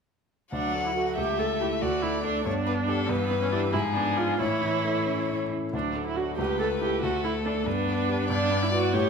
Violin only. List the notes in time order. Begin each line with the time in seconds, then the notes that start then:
0.52 F#5
1.17 E5
1.82 D5
2.45 C#5
2.67 B4
2.89 A4
3.10 B4
3.73 G#4
4.41 C#5
6.38 B4
7.03 A4
7.66 B4
8.29 D5
8.94 C#5